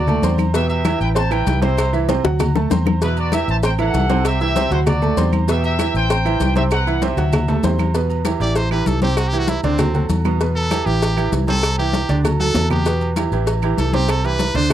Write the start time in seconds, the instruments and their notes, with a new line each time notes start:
Already playing: fingered electric bass D2, trumpet section F#4 D5
0.07 upright piano A3 A4 A5, high conga, low conga, maracas
0.22 fingered electric bass E2, upright piano C4 C5 C6, cowbell, high conga, low agogo, maracas
0.38 high conga, low agogo, claves, maracas
0.53 upright piano B2 B3 B4, trumpet section G4 E5, cowbell, maracas
0.68 trumpet section G4 E5, high conga, low agogo, maracas
0.85 upright piano E3 E4 E5, cowbell, high conga, low agogo, claves, maracas
1.00 fingered electric bass A1, trumpet section B4 G5, high conga, maracas
1.15 upright piano C4 C5 C6, trumpet section C5 A5, cowbell, high conga, low agogo, maracas
1.30 upright piano E3 E4 E5, trumpet section B4 G5, high conga, low agogo, claves, maracas
1.47 fingered electric bass C2, cowbell, high conga, low timbale, maracas
1.61 upright piano C3 C4 C5, trumpet section E4 C5, cowbell, high conga, low agogo, maracas
1.78 cowbell, high conga, low agogo, claves, maracas
1.93 upright piano E3 E4 E5, high conga, maracas
2.09 upright piano C3 C4 C5, cowbell, high conga, low agogo, maracas
2.24 fingered electric bass D2, upright piano F#3 F#4 F#5, cowbell, high bongo, high conga, maracas
2.40 cowbell, high bongo, high conga, low conga, low agogo, claves, maracas
2.55 upright piano A3 A4 A5, low bongo, high conga, maracas
2.70 fingered electric bass E2, upright piano C4 C5 C6, cowbell, low bongo, high conga, low agogo, maracas
2.86 low bongo, high conga, low agogo, claves, maracas
3.01 upright piano B2 B3 B4, trumpet section E4 B4, cowbell, high conga, maracas
3.17 trumpet section F#4 D5, high conga, low agogo, maracas
3.32 upright piano E3 E4 E5, trumpet section G4 E5, cowbell, high conga, low agogo, claves, maracas
3.48 fingered electric bass A1, trumpet section C5 A5, high conga, maracas
3.63 upright piano C4 C5 C6, trumpet section C5 G5, cowbell, low agogo, maracas
3.78 upright piano E3 E4 E5, trumpet section A4 F#5, high conga, low agogo, claves, maracas
3.94 fingered electric bass C2, cowbell, high conga, low timbale, maracas
4.09 upright piano C3 C4 C5, cowbell, high conga, low agogo, maracas
4.25 trumpet section G4 E5, cowbell, low agogo, claves, maracas
4.40 upright piano E3 E4 E5, trumpet section G4 E5, high conga, maracas
4.56 upright piano C3 C4 C5, cowbell, high conga, low agogo, maracas
4.71 fingered electric bass D2, upright piano F#3 F#4 F#5, trumpet section E4 C5, cowbell, high conga, maracas
4.86 trumpet section F#4 D5, cowbell, high conga, low conga, low agogo, claves, maracas
5.02 upright piano A3 A4 A5, high conga, low conga, maracas
5.17 fingered electric bass E2, upright piano C4 C5 C6, cowbell, high conga, low timbale, low agogo, maracas
5.33 high conga, low agogo, claves, maracas
5.48 upright piano B2 B3 B4, trumpet section G4 E5, cowbell, high conga, maracas
5.63 trumpet section G4 E5, high conga, low agogo, maracas
5.79 upright piano E3 E4 E5, cowbell, high conga, low agogo, claves, maracas
5.94 fingered electric bass A1, trumpet section C5 G5, high conga, maracas
6.09 upright piano C4 C5 C6, cowbell, high conga, low agogo, maracas
6.25 upright piano E3 E4 E5, high conga, low agogo, claves, maracas
6.40 fingered electric bass C2, cowbell, high conga, low timbale, maracas
6.55 upright piano C3 C4 C5, trumpet section G4 E5, cowbell, high conga, low agogo, maracas
6.71 trumpet section B4 F#5, cowbell, high conga, low agogo, claves, maracas
6.87 upright piano E3 E4 E5, high conga, maracas
7.02 upright piano C3 C4 C5, trumpet section G4 E5, cowbell, high conga, high timbale, low agogo, maracas
7.17 fingered electric bass D2, upright piano F#3 F#4 F#5, cowbell, high conga, high timbale, maracas
7.33 cowbell, high conga, low conga, high timbale, low agogo, claves, maracas
7.48 upright piano A3 A4 A5, high conga, low conga, low timbale, maracas
7.63 fingered electric bass E2, upright piano C4 C5 C6, cowbell, high conga, low timbale, low agogo, maracas
7.79 high conga, low timbale, low agogo, claves, maracas
7.94 upright piano B2 B3 B4, cowbell, high conga, maracas
8.10 high conga, low agogo, maracas
8.25 upright piano E3 E4 G4, cowbell, high conga, low agogo, claves, maracas
8.40 fingered electric bass A1, upright piano E3 E4 G4, trumpet D5, high conga, maracas
8.55 trumpet C5, cowbell, high conga, low agogo, maracas
8.71 upright piano E3 E4 G4, trumpet B4, high conga, low agogo, claves, maracas
8.86 fingered electric bass C2, trumpet A4, cowbell, high conga, low timbale, maracas
9.01 upright piano C3 C4 C5, trumpet G4, cowbell, high conga, low agogo, maracas
9.17 trumpet F#4, cowbell, high conga, low agogo, claves, maracas
9.28 trumpet G4, high conga, maracas
9.33 upright piano E3 E4 G4
9.39 trumpet F#4
9.48 trumpet E4, cowbell, high conga, low agogo, maracas
9.63 fingered electric bass D2, upright piano D3 D4 D5, trumpet C4, cowbell, high conga, maracas
9.78 upright piano F#3 F#4 A4, cowbell, high conga, low conga, low agogo, claves, maracas
9.94 upright piano F#3 F#4 A4, high conga, low conga, maracas
10.09 fingered electric bass E2, cowbell, high conga, low agogo, maracas
10.25 upright piano B2 B3 B4, high conga, low agogo, claves, maracas
10.40 upright piano B2 B3 B4, cowbell, maracas
10.55 trumpet A4, high conga, low agogo, maracas
10.71 upright piano E3 E4 G4, cowbell, high conga, low agogo, claves, maracas
10.86 fingered electric bass A1, upright piano E3 E4 G4, trumpet G4, high conga, maracas
11.01 cowbell, high conga, low agogo, maracas
11.17 upright piano E3 E4 G4, low agogo, claves, maracas
11.32 fingered electric bass C2, cowbell, high conga, low timbale, maracas
11.47 upright piano C3 C4 C5, trumpet A4, cowbell, high conga, low agogo, maracas
11.63 cowbell, low agogo, claves, maracas
11.78 upright piano E3 E4 G4, trumpet G4, high conga, maracas
11.93 cowbell, high conga, low agogo, maracas
12.09 fingered electric bass D2, upright piano D3 D4 D5, cowbell, high conga, maracas
12.24 upright piano F#3 F#4 A4, cowbell, high conga, low conga, low agogo, claves, maracas
12.39 upright piano F#3 F#4 A4, trumpet A4, high conga, maracas
12.55 fingered electric bass E2, cowbell, low conga, low agogo, maracas
12.70 upright piano B2 B3 B4, trumpet G4, low conga, low agogo, claves, maracas
12.85 upright piano B2 B3 B4, cowbell, high conga, maracas
13.01 high conga, low agogo, maracas
13.16 upright piano E3 E4 G4, cowbell, high conga, low agogo, claves, maracas
13.32 fingered electric bass A1, upright piano E3 E4 G4, high conga, maracas
13.47 cowbell, high conga, low agogo, maracas
13.62 upright piano E3 E4 G4, high conga, low agogo, claves, maracas
13.78 fingered electric bass C2, trumpet A4, cowbell, high conga, maracas
13.93 upright piano C3 C4 C5, trumpet G4, cowbell, high conga, low agogo, maracas
14.09 trumpet A4, cowbell, low agogo, claves, maracas
14.24 upright piano E3 E4 G4, trumpet B4, high conga, maracas
14.39 cowbell, high conga, low agogo, maracas
14.54 fingered electric bass D2, upright piano D3 D4 D5, trumpet C5, cowbell, high conga, maracas
14.70 upright piano F#3, low agogo